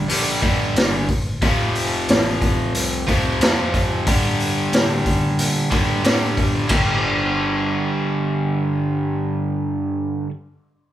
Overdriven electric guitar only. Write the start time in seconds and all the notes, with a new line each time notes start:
0.09 G2 D3 G3
0.42 G2 D3 G3
1.42 F2 C3 F3
3.07 F2 C3 F3
3.40 F2 C3 F3
4.06 G2 D3 G3
5.71 G2 D3 G3
6.03 G2 D3 G3
6.68 G2 D3
6.72 G3